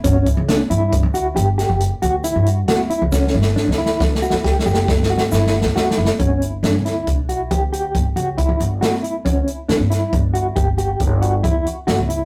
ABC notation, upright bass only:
X:1
M:7/4
L:1/16
Q:1/4=137
K:Glyd
V:1 name="Upright bass" clef=bass
G,,,2 z C,,2 z G,,3 D,,3 G,,,3 F,,,2 z D,,3 G,,3 D,,3 C,,- | C,,2 G,,,2 z D,,3 D,,2 z D,,2 z F,,,3 G,,,2 z G,,,3 D,,2 z F,,, z | G,,,4 G,, D,,3 B,,,4 D,,4 G,,, z C,,2 z D,, G,,,2 z4 | D,,2 z2 D,, G,,2 z G,,,4 G,,,4 G,,,4 E,,2 z2 G,,, C,,2 z |]